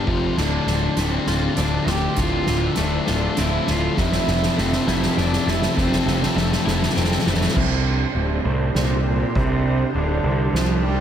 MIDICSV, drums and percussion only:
0, 0, Header, 1, 2, 480
1, 0, Start_track
1, 0, Tempo, 598205
1, 304, Time_signature, 3, 2, 24, 8
1, 8830, End_track
2, 0, Start_track
2, 0, Title_t, "Drums"
2, 58, Note_on_c, 9, 36, 98
2, 138, Note_off_c, 9, 36, 0
2, 297, Note_on_c, 9, 38, 68
2, 297, Note_on_c, 9, 49, 83
2, 378, Note_off_c, 9, 38, 0
2, 378, Note_off_c, 9, 49, 0
2, 536, Note_on_c, 9, 38, 75
2, 616, Note_off_c, 9, 38, 0
2, 777, Note_on_c, 9, 38, 82
2, 777, Note_on_c, 9, 42, 77
2, 858, Note_off_c, 9, 38, 0
2, 858, Note_off_c, 9, 42, 0
2, 1014, Note_on_c, 9, 38, 74
2, 1094, Note_off_c, 9, 38, 0
2, 1258, Note_on_c, 9, 38, 78
2, 1258, Note_on_c, 9, 42, 73
2, 1338, Note_off_c, 9, 38, 0
2, 1338, Note_off_c, 9, 42, 0
2, 1497, Note_on_c, 9, 38, 88
2, 1577, Note_off_c, 9, 38, 0
2, 1738, Note_on_c, 9, 38, 71
2, 1738, Note_on_c, 9, 42, 61
2, 1741, Note_on_c, 9, 36, 95
2, 1818, Note_off_c, 9, 38, 0
2, 1818, Note_off_c, 9, 42, 0
2, 1821, Note_off_c, 9, 36, 0
2, 1975, Note_on_c, 9, 38, 79
2, 2056, Note_off_c, 9, 38, 0
2, 2213, Note_on_c, 9, 38, 91
2, 2213, Note_on_c, 9, 42, 66
2, 2293, Note_off_c, 9, 38, 0
2, 2293, Note_off_c, 9, 42, 0
2, 2459, Note_on_c, 9, 38, 93
2, 2540, Note_off_c, 9, 38, 0
2, 2704, Note_on_c, 9, 38, 88
2, 2704, Note_on_c, 9, 42, 66
2, 2784, Note_off_c, 9, 38, 0
2, 2784, Note_off_c, 9, 42, 0
2, 2943, Note_on_c, 9, 38, 89
2, 3023, Note_off_c, 9, 38, 0
2, 3184, Note_on_c, 9, 38, 90
2, 3188, Note_on_c, 9, 36, 99
2, 3264, Note_off_c, 9, 38, 0
2, 3268, Note_off_c, 9, 36, 0
2, 3306, Note_on_c, 9, 38, 99
2, 3387, Note_off_c, 9, 38, 0
2, 3428, Note_on_c, 9, 38, 98
2, 3509, Note_off_c, 9, 38, 0
2, 3550, Note_on_c, 9, 38, 104
2, 3630, Note_off_c, 9, 38, 0
2, 3672, Note_on_c, 9, 38, 96
2, 3752, Note_off_c, 9, 38, 0
2, 3789, Note_on_c, 9, 38, 93
2, 3869, Note_off_c, 9, 38, 0
2, 3909, Note_on_c, 9, 38, 99
2, 3989, Note_off_c, 9, 38, 0
2, 4030, Note_on_c, 9, 38, 90
2, 4111, Note_off_c, 9, 38, 0
2, 4149, Note_on_c, 9, 38, 97
2, 4229, Note_off_c, 9, 38, 0
2, 4274, Note_on_c, 9, 38, 92
2, 4354, Note_off_c, 9, 38, 0
2, 4393, Note_on_c, 9, 38, 97
2, 4473, Note_off_c, 9, 38, 0
2, 4510, Note_on_c, 9, 38, 115
2, 4591, Note_off_c, 9, 38, 0
2, 4631, Note_on_c, 9, 38, 87
2, 4632, Note_on_c, 9, 36, 106
2, 4711, Note_off_c, 9, 38, 0
2, 4712, Note_off_c, 9, 36, 0
2, 4753, Note_on_c, 9, 38, 111
2, 4833, Note_off_c, 9, 38, 0
2, 4872, Note_on_c, 9, 38, 105
2, 4952, Note_off_c, 9, 38, 0
2, 4996, Note_on_c, 9, 38, 110
2, 5076, Note_off_c, 9, 38, 0
2, 5112, Note_on_c, 9, 38, 113
2, 5192, Note_off_c, 9, 38, 0
2, 5234, Note_on_c, 9, 38, 100
2, 5314, Note_off_c, 9, 38, 0
2, 5355, Note_on_c, 9, 38, 110
2, 5435, Note_off_c, 9, 38, 0
2, 5476, Note_on_c, 9, 38, 104
2, 5530, Note_off_c, 9, 38, 0
2, 5530, Note_on_c, 9, 38, 104
2, 5586, Note_off_c, 9, 38, 0
2, 5586, Note_on_c, 9, 38, 99
2, 5649, Note_off_c, 9, 38, 0
2, 5649, Note_on_c, 9, 38, 101
2, 5709, Note_off_c, 9, 38, 0
2, 5709, Note_on_c, 9, 38, 112
2, 5766, Note_off_c, 9, 38, 0
2, 5766, Note_on_c, 9, 38, 112
2, 5829, Note_off_c, 9, 38, 0
2, 5829, Note_on_c, 9, 38, 106
2, 5887, Note_off_c, 9, 38, 0
2, 5887, Note_on_c, 9, 38, 112
2, 5946, Note_off_c, 9, 38, 0
2, 5946, Note_on_c, 9, 38, 120
2, 6003, Note_off_c, 9, 38, 0
2, 6003, Note_on_c, 9, 38, 124
2, 6063, Note_on_c, 9, 49, 117
2, 6068, Note_on_c, 9, 36, 102
2, 6083, Note_off_c, 9, 38, 0
2, 6143, Note_off_c, 9, 49, 0
2, 6148, Note_off_c, 9, 36, 0
2, 6548, Note_on_c, 9, 51, 83
2, 6628, Note_off_c, 9, 51, 0
2, 7020, Note_on_c, 9, 38, 90
2, 7020, Note_on_c, 9, 51, 79
2, 7100, Note_off_c, 9, 38, 0
2, 7100, Note_off_c, 9, 51, 0
2, 7503, Note_on_c, 9, 51, 75
2, 7506, Note_on_c, 9, 36, 106
2, 7583, Note_off_c, 9, 51, 0
2, 7586, Note_off_c, 9, 36, 0
2, 7981, Note_on_c, 9, 51, 89
2, 8062, Note_off_c, 9, 51, 0
2, 8464, Note_on_c, 9, 38, 78
2, 8464, Note_on_c, 9, 51, 85
2, 8544, Note_off_c, 9, 38, 0
2, 8544, Note_off_c, 9, 51, 0
2, 8701, Note_on_c, 9, 51, 87
2, 8781, Note_off_c, 9, 51, 0
2, 8830, End_track
0, 0, End_of_file